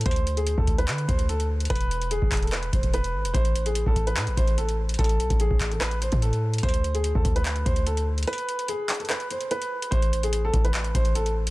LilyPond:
<<
  \new Staff \with { instrumentName = "Grand piano" } { \time 4/4 \key a \minor \tempo 4 = 146 c''8. gis'8 a'8 b'8. c''8 a'8 r8 | b'4 gis'8. a'16 b'8 c''8 b'4 | c''8. gis'8 a'8 b'8. c''8 a'8 r8 | a'4 gis'8. a'16 b'8 c''8 a'4 |
c''8. gis'8 a'8 b'8. c''8 a'8 r8 | b'4 gis'8. a'16 b'8 c''8 b'4 | c''8. gis'8 a'8 b'8. c''8 a'8 r8 | }
  \new Staff \with { instrumentName = "808-style bass" } { \clef bass \time 4/4 \key a \minor d,4~ d,16 d,8. d8 d,4. | e,,4~ e,,16 e,,4~ e,,16 e,,4 gis,,16 e,,16 | a,,4~ a,,16 a,,8. a,16 a,,16 a,,4. | a,,8 b,,16 a,,8 a,,4. a,4~ a,16 |
d,4~ d,16 d,16 d,4 d,4. | r1 | a,,4. a,,4 a,,4. | }
  \new DrumStaff \with { instrumentName = "Drums" } \drummode { \time 4/4 <hh bd>32 hh32 hh16 hh16 hh16 hh16 bd16 <hh bd>16 hh16 <hc hh>16 hh16 <hh bd>16 hh16 hh16 hh8 hh32 hh32 | <hh bd>32 hh32 hh16 hh16 hh16 hh16 bd16 <hc hh hho bd>32 hh32 hh32 hh32 <hc hh>16 hh16 <hh bd>16 <hh bd>16 hh16 hh8 hh16 | <hh bd>16 hh16 hh16 hh16 hh16 bd16 <hh bd>16 hh16 <hc hh>16 hh16 <hh bd>16 hh16 hh16 hh8 hh32 hh32 | <hh bd>32 hh32 hh16 hh16 <hh bd>16 hh16 bd16 <hc hh bd>16 hh16 <hc hh>16 hh16 hh16 <hh bd>16 hh16 hh8 hh32 hh32 |
<hh bd>32 hh32 hh16 hh16 hh16 hh16 bd16 <hh bd>16 hh16 <hc hh>16 hh16 <hh bd>16 hh16 hh16 hh8 hh32 hh32 | hh32 hh32 hh16 hh16 hh16 hh8 <hc hh hho>32 hh32 hh32 hh32 <hc hh>16 hh16 hh16 hh16 hh16 hh8 hh16 | <hh bd>16 hh16 hh16 hh16 hh8 <hh bd>16 hh16 <hc hh>16 hh16 <hh bd>16 hh16 hh16 hh8 hh16 | }
>>